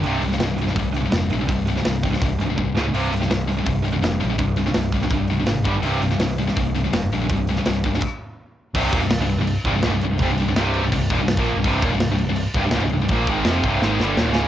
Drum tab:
CC |----------------|----------------|----------------|----------------|
HH |o-o-o-o-o-o-o-o-|o-o-o-o-o-o-----|o-o-o-o-o-o-o-o-|o-o-o-o-o-o-o-o-|
SD |---oo--o----o---|---oo--o------o-|---oo-------o---|---oo--o----o---|
BD |--------o-------|o-----o-o---o---|--------o-------|o-----o-o-----o-|

CC |----------------|--------x-------|x-x-x-x-x-x-x-x-|x-x-x-x-x-x-x-x-|
HH |o-o-o-o-o-o-o-o-|o-o-o-o---------|----------------|----------------|
SD |---oo--o----o---|---oo--o--------|----o-------o---|----o-------o---|
BD |--------o-------|o-----o-o-------|o-o-------o-----|o-------o-o--o--|

CC |x-x-x-x-x-x-x-x-|x-x-x-x---------|
HH |----------------|----------------|
SD |----o-------o---|----o---o-o-o-o-|
BD |o-o-------o-----|o-o---o---------|